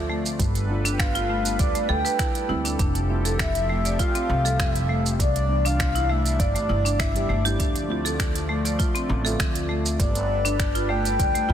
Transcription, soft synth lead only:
0.93 1.01 G5 medium
0.99 1.61 F5 medium
1.60 1.91 D5 loud
1.89 2.49 G5 loud
3.39 4.01 E5 loud
3.99 4.59 F5 loud
4.60 5.02 E5 loud
5.20 5.67 D5 loud
5.66 6.12 F5 loud
6.10 6.41 E5 loud
6.40 7.01 D5 loud
7.00 7.45 E5 medium
10.00 10.91 D5 loud
10.89 11.53 G5 loud

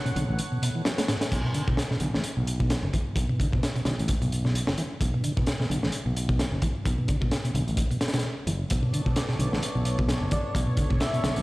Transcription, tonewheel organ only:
0.06 0.12 B2 loud
0.16 0.24 D3 medium
0.52 0.59 B2 medium
0.62 0.70 B2 medium
0.75 0.82 E3 medium
0.85 0.90 F#3 medium
0.98 1.02 A3 medium
1.09 1.17 A2 medium
1.44 1.54 B2 medium
1.55 1.63 D3 medium
1.68 1.77 B2 loud
1.91 1.97 B2 loud
2.01 2.09 D3 medium
2.37 2.43 B2 medium
2.60 2.70 B2 loud
2.93 2.98 E3 loud
3.29 3.39 B2 medium
3.40 3.48 D3 medium
3.53 3.62 B2 loud
3.76 3.82 B2 loud
3.86 3.94 D3 medium
4.22 4.28 B2 medium
4.45 4.54 B2 loud
4.78 4.83 E3 loud
5.14 5.24 B2 medium
5.24 5.32 D3 medium
5.37 5.46 B2 loud
5.60 5.66 B2 loud
5.70 5.78 D3 medium
6.06 6.13 B2 medium
6.29 6.39 B2 loud
6.62 6.67 E3 loud
6.98 7.08 B2 medium
7.08 7.17 D3 medium
7.21 7.31 B2 loud
7.45 7.51 B2 loud
7.54 7.63 D3 medium
7.91 7.97 B2 medium
8.14 8.23 B2 loud
8.47 8.52 E3 loud
8.83 8.93 B2 medium
8.93 9.01 D3 medium
9.06 9.16 B2 loud
9.29 9.35 B2 loud
9.39 9.48 D3 medium
9.75 9.82 B2 medium
9.98 10.08 B2 loud
10.31 10.36 E3 loud
10.67 10.77 B2 medium
10.78 10.86 D3 medium
10.90 11.00 B2 loud
11.13 11.20 B2 loud
11.24 11.32 D3 medium

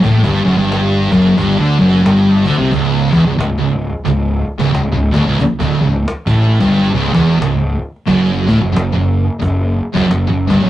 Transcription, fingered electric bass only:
0.04 0.23 A1 loud
0.24 0.43 G1 loud
0.44 0.56 F#1 medium
0.57 1.07 G1 loud
1.12 1.36 F#1 medium
1.38 1.57 G1 loud
1.59 1.77 D2 loud
1.79 2.03 F#1 medium
2.05 2.43 G1 medium
2.46 2.58 D2 medium
2.59 2.71 C2 loud
2.72 3.10 C#1 medium
3.13 3.25 E1 medium
3.27 3.38 C#1 medium
3.39 3.58 C#1 medium
3.60 3.90 C#1 medium
4.06 4.44 C#1 medium
4.59 4.71 C#1 loud
4.72 4.91 C#1 medium
4.93 5.12 C#1 medium
5.14 5.26 D1 loud
5.26 5.38 C#1 loud
5.40 muted fingered electric bass stroke soft
5.61 5.79 D1 loud
5.80 6.04 C#1 medium
6.27 6.58 A1 loud
6.61 6.92 G1 loud
6.94 7.13 C#1 loud
7.14 7.38 E1 loud
7.40 7.78 C#1 medium
8.08 8.46 F#1 loud
8.49 8.61 A1 loud
8.62 8.74 F#1 medium
8.75 8.94 F#1 medium
8.96 9.27 F#1 medium
9.42 9.80 F#1 medium
9.96 10.08 F#1 loud
10.10 10.28 F#1 medium
10.30 10.49 F#1 medium
10.51 10.62 G1 loud
10.63 10.70 F#1 loud

